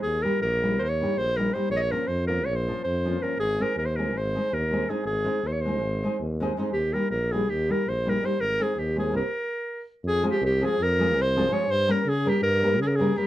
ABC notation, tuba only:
X:1
M:9/8
L:1/16
Q:3/8=108
K:Ab
V:1 name="Tuba" clef=bass
E,,4 B,,,4 E,,4 B,,,6 | B,,,4 F,,4 B,,,4 F,,6 | A,,,4 E,,4 A,,,4 E,,6 | A,,,4 E,,4 A,,,4 E,,6 |
E,,4 B,,,4 E,,4 B,,,6 | A,,,4 E,,4 C,, z8 z | [K:Fm] F,,4 C,,4 F,,4 C,,6 | G,,4 D,4 G,,4 D,6 |]